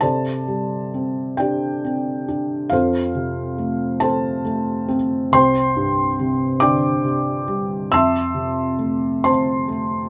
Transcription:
0.01 2.68 C3 medium
0.01 1.35 A4 medium
0.01 1.35 C5 medium
0.01 1.36 D5 medium
0.01 1.34 A5 medium
0.48 2.24 G3 soft
0.94 1.83 C4 soft
1.37 2.27 D4 soft
1.37 2.68 G4 medium
1.37 2.68 D5 medium
1.37 2.75 G5 medium
1.85 2.69 C4 soft
2.28 2.71 D4 soft
2.70 5.29 F2 medium
2.70 3.98 F4 medium
2.70 3.98 A4 medium
2.70 3.98 C5 medium
2.70 4.05 F5 medium
3.15 4.85 C3 soft
3.58 4.43 A3 medium
4.00 4.87 C4 medium
4.00 4.96 A4 medium
4.00 4.96 C5 medium
4.00 4.95 A5 medium
4.45 5.30 A3 medium
4.89 5.31 C4 medium
5.32 7.88 C2 medium
5.32 6.59 C5 medium
5.32 6.59 G5 medium
5.32 6.59 C6 loud
5.76 7.44 G2 soft
6.19 7.03 C3 soft
6.60 7.88 D3 medium
6.60 7.88 D5 medium
6.60 7.88 G5 medium
6.60 7.95 D6 medium
7.04 7.89 C3 soft
7.48 7.90 G3 soft
7.91 10.09 F2 medium
7.91 9.22 E5 medium
7.91 9.22 A5 medium
7.91 9.22 C6 medium
7.91 9.29 E6 medium
8.34 10.09 C3 soft
8.79 9.67 A3 soft
9.24 10.09 C4 medium
9.24 10.09 C5 medium
9.24 10.09 A5 medium
9.24 10.09 C6 medium
9.68 10.09 A3 soft

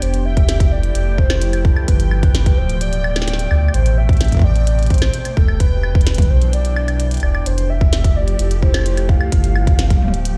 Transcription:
0.00 0.90 F1 loud
0.00 3.70 F3 medium
0.00 1.86 A3 medium
0.00 1.86 E4 medium
0.00 7.42 G4 medium
0.00 0.27 C5 loud
0.00 10.38 G5 medium
0.00 closed hi-hat medium
0.14 closed hi-hat medium
0.25 0.73 E5 loud
0.37 kick loud
0.37 closed hi-hat soft
0.49 snare loud
0.49 closed hi-hat medium
0.60 kick loud
0.60 closed hi-hat medium
0.72 1.20 D5 loud
0.83 closed hi-hat soft
0.95 1.72 F1 loud
0.95 closed hi-hat medium
1.18 1.66 C5 loud
1.18 kick medium
1.30 snare loud
1.30 claves medium
1.42 closed hi-hat medium
1.53 closed hi-hat medium
1.53 claves soft
1.65 1.87 A4 medium
1.65 kick loud
1.76 claves medium
1.88 2.53 G1 medium
1.88 7.42 B2 medium
1.88 5.57 A3 medium
1.88 2.59 B4 loud
1.88 kick medium
1.88 closed hi-hat medium
2.00 closed hi-hat soft
2.11 claves medium
2.23 kick loud
2.23 closed hi-hat soft
2.35 snare loud
2.35 closed hi-hat medium
2.46 kick loud
2.46 closed hi-hat medium
2.58 3.46 D1 loud
2.58 2.83 C5 medium
2.69 closed hi-hat soft
2.81 3.50 D5 loud
2.81 closed hi-hat medium
2.93 closed hi-hat medium
3.04 claves medium
3.16 snare loud
3.16 closed hi-hat soft
3.16 claves medium
3.22 snare loud
3.28 snare medium
3.28 closed hi-hat medium
3.33 snare medium
3.39 closed hi-hat medium
3.51 3.68 D2 medium
3.51 3.73 D5 loud
3.51 claves medium
3.68 claves medium
3.74 5.09 A1 loud
3.74 5.58 C3 medium
3.74 3.99 C5 loud
3.74 closed hi-hat medium
3.86 closed hi-hat soft
3.98 4.46 E5 loud
4.09 kick loud
4.09 closed hi-hat soft
4.13 closed hi-hat soft
4.17 snare loud
4.17 closed hi-hat soft
4.21 closed hi-hat medium
4.25 closed hi-hat soft
4.28 closed hi-hat soft
4.32 kick soft
4.32 closed hi-hat soft
4.35 kick medium
4.37 kick medium
4.39 kick medium
4.42 4.92 D5 loud
4.42 kick medium
4.56 closed hi-hat soft
4.67 closed hi-hat medium
4.79 closed hi-hat soft
4.83 closed hi-hat soft
4.86 closed hi-hat soft
4.90 5.39 C5 loud
4.90 kick medium
4.90 closed hi-hat soft
4.94 closed hi-hat soft
4.98 snare loud
4.98 closed hi-hat soft
4.98 claves medium
5.14 closed hi-hat medium
5.25 closed hi-hat medium
5.25 claves soft
5.37 6.25 E1 medium
5.37 5.60 A4 medium
5.37 kick loud
5.48 claves medium
5.60 7.44 E3 medium
5.60 7.45 D4 medium
5.60 6.32 B4 loud
5.60 kick medium
5.60 closed hi-hat medium
5.83 claves medium
5.95 kick loud
6.01 closed hi-hat soft
6.07 snare loud
6.07 closed hi-hat medium
6.14 closed hi-hat medium
6.18 kick loud
6.18 closed hi-hat medium
6.18 mid tom medium
6.22 closed hi-hat soft
6.30 7.18 B1 loud
6.30 6.53 C5 loud
6.42 closed hi-hat soft
6.53 7.19 D5 loud
6.53 closed hi-hat medium
6.65 closed hi-hat medium
6.76 claves medium
6.88 closed hi-hat soft
6.88 claves medium
7.00 closed hi-hat medium
7.11 closed hi-hat soft
7.14 closed hi-hat soft
7.17 closed hi-hat soft
7.20 7.41 E1 medium
7.20 7.48 D5 loud
7.20 closed hi-hat soft
7.20 claves medium
7.35 claves medium
7.46 8.35 F1 loud
7.46 10.38 F3 medium
7.46 10.38 A3 medium
7.46 9.30 E4 medium
7.46 9.30 G4 loud
7.46 7.71 C5 loud
7.46 closed hi-hat medium
7.58 closed hi-hat medium
7.70 8.18 E5 loud
7.81 kick loud
7.93 snare loud
7.93 closed hi-hat medium
8.04 kick loud
8.04 closed hi-hat medium
8.16 8.64 D5 loud
8.28 closed hi-hat soft
8.39 9.16 F1 loud
8.39 closed hi-hat medium
8.51 closed hi-hat medium
8.63 9.11 C5 loud
8.63 kick medium
8.74 snare loud
8.74 claves medium
8.76 claves medium
8.79 claves soft
8.81 claves soft
8.84 closed hi-hat medium
8.84 claves soft
8.97 closed hi-hat medium
8.97 claves soft
9.09 10.38 F5 loud
9.09 kick loud
9.21 claves medium
9.32 9.97 G1 loud
9.32 10.38 B3 medium
9.32 10.38 G4 medium
9.32 kick medium
9.32 closed hi-hat medium
9.44 closed hi-hat medium
9.56 claves medium
9.67 kick loud
9.67 closed hi-hat soft
9.79 snare loud
9.79 closed hi-hat medium
9.90 kick loud
9.90 closed hi-hat medium
9.90 mid tom soft
9.96 mid tom soft
10.02 10.38 D1 loud
10.02 mid tom medium
10.08 mid tom medium
10.14 closed hi-hat soft
10.25 closed hi-hat medium

